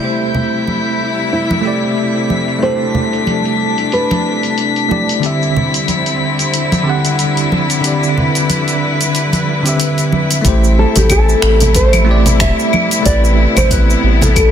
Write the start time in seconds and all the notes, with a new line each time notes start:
0.00 C3 G3 A3 E4 G4 B6
0.05 C5
0.35 low conga
0.67 open hi-hat, high conga
1.32 E4, open hi-hat
1.51 high conga
1.61 A3 E4
1.65 G4 D5
1.83 open hi-hat, cabasa
1.98 open hi-hat, cabasa
2.16 open hi-hat
2.30 high conga
2.48 open hi-hat, cabasa
2.59 A3 D4 E4, open hi-hat
2.63 G4 A4 C5, cabasa
2.81 cabasa
2.95 low conga
3.13 open hi-hat, cabasa
3.27 open hi-hat, high conga, cabasa
3.45 open hi-hat, cabasa
3.78 open hi-hat, cabasa
3.92 B4, open hi-hat, cabasa
4.11 open hi-hat, high conga, cabasa
4.43 open hi-hat, cabasa
4.58 open hi-hat, cabasa
4.76 open hi-hat, cabasa
4.89 A3 E4 G4 D5, high conga
5.09 open hi-hat, cabasa
5.20 D3 G3 C4 E4, open hi-hat
5.24 G4 E5, cabasa
5.43 cabasa
5.56 low conga
5.74 open hi-hat, cabasa
5.88 open hi-hat, high conga, cabasa
6.06 open hi-hat, cabasa
6.39 open hi-hat, cabasa
6.54 open hi-hat, cabasa
6.72 open hi-hat, high conga, cabasa
6.83 D3 C4
6.87 G4 F#5
7.05 open hi-hat, cabasa
7.19 open hi-hat, cabasa
7.37 open hi-hat, cabasa
7.52 high conga
7.70 open hi-hat, cabasa
7.81 D3 C4, open hi-hat
7.85 G4 B4 D5, cabasa
8.03 cabasa
8.18 low conga
8.35 open hi-hat, cabasa
8.50 open hi-hat, high conga, cabasa
8.68 open hi-hat, cabasa
9.01 open hi-hat, cabasa
9.15 open hi-hat, cabasa
9.33 open hi-hat, high conga, cabasa
9.62 D3 C4, open hi-hat, cabasa
9.67 G4 E5
9.80 open hi-hat, cabasa
9.98 open hi-hat, cabasa
10.12 high conga
10.31 open hi-hat, cabasa
10.41 A1 A3 E4, kick, open hi-hat, cabasa
10.45 C3 G3 A3 E4 G4 C5
10.64 cabasa
10.79 A4
10.96 A1 G4, open hi-hat, high conga, low conga, cabasa
11.10 A4, kick, open hi-hat, cabasa, claves
11.29 cabasa
11.42 A1, finger snap
11.60 open hi-hat, low conga, cabasa
11.75 C5, kick, open hi-hat, cabasa
11.93 open hi-hat, high conga, cabasa, claves
12.05 A3 E4
12.09 G4 D5
12.26 open hi-hat, low conga, cabasa
12.40 E1 E5, finger snap, kick, open hi-hat, cabasa
12.59 cabasa
12.73 high conga, claves
12.91 open hi-hat, cabasa
13.02 A1 A3 B3 E4 D5, kick, open hi-hat, cabasa
13.07 G4 B4
13.24 cabasa
13.56 A1 C5, open hi-hat, high conga, low conga, cabasa, claves
13.71 B4, kick, open hi-hat, cabasa
13.90 cabasa
14.03 A1
14.21 A4, open hi-hat, low conga, cabasa
14.36 A4, kick, open hi-hat, cabasa, claves